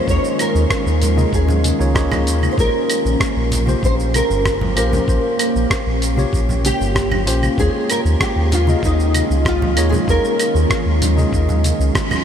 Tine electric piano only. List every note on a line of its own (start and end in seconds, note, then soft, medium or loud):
0.00 0.06 A#3 medium
0.00 0.07 D#4 medium
0.00 0.07 F4 medium
0.00 0.08 G#4 medium
0.00 0.09 C#5 medium
0.00 1.18 D#5 medium
0.06 1.13 A#3 medium
0.06 1.13 D#4 medium
0.06 1.13 F4 medium
0.06 1.14 G#4 medium
0.06 1.14 C#5 medium
1.16 1.76 A#3 medium
1.16 1.76 D#4 medium
1.16 1.77 F4 medium
1.16 1.77 G#4 medium
1.16 1.77 D#5 medium
1.79 1.91 A#3 medium
1.79 1.92 D#4 medium
1.79 1.92 F4 medium
1.79 1.92 G#4 medium
1.79 1.92 C#5 medium
1.95 2.24 A#3 loud
1.95 2.25 D#4 medium
1.95 2.25 F4 medium
1.95 2.25 G#4 medium
1.95 2.25 C#5 loud
2.56 3.63 A#3 medium
2.56 3.63 C#4 medium
2.56 3.64 F4 medium
2.56 3.64 G4 medium
2.56 3.64 C5 medium
3.66 4.72 A#3 medium
3.66 4.72 C#4 medium
3.66 4.73 F4 medium
3.66 4.73 G4 medium
3.66 4.74 C5 medium
4.76 5.04 A#3 medium
4.76 5.04 C#4 medium
4.76 5.04 F4 medium
4.76 5.04 G4 medium
4.76 5.05 C5 medium
5.06 6.13 A#3 medium
5.06 6.13 C#4 medium
5.06 6.14 F4 medium
5.06 6.14 G4 medium
5.06 6.14 C5 medium
6.16 7.22 A#3 medium
6.16 7.23 C#4 medium
6.16 7.23 F4 medium
6.16 7.23 G4 medium
6.16 7.24 C#5 medium
7.26 7.54 A#3 medium
7.26 7.54 C#4 medium
7.26 7.54 F4 medium
7.26 7.54 G4 medium
7.26 7.55 C5 loud
7.57 8.64 G#3 medium
7.57 8.63 A#3 medium
7.57 8.63 D#4 medium
7.57 8.64 F4 medium
7.57 8.65 C#5 medium
8.66 9.72 A#3 medium
8.66 9.73 D#4 medium
8.66 9.73 F4 medium
8.66 9.73 G#4 medium
8.66 9.74 D#5 medium
9.77 10.04 A#3 medium
9.77 10.04 D#4 medium
9.77 10.05 F4 medium
9.77 10.05 G#4 medium
9.77 10.05 C#5 loud
10.06 11.13 A#3 medium
10.06 11.13 D#4 medium
10.06 11.14 F4 medium
10.06 11.14 G#4 medium
10.06 11.14 C#5 medium
11.16 12.22 A#3 medium
11.16 12.22 D#4 medium
11.16 12.23 F4 medium
11.16 12.23 G#4 medium
11.16 12.24 D#5 medium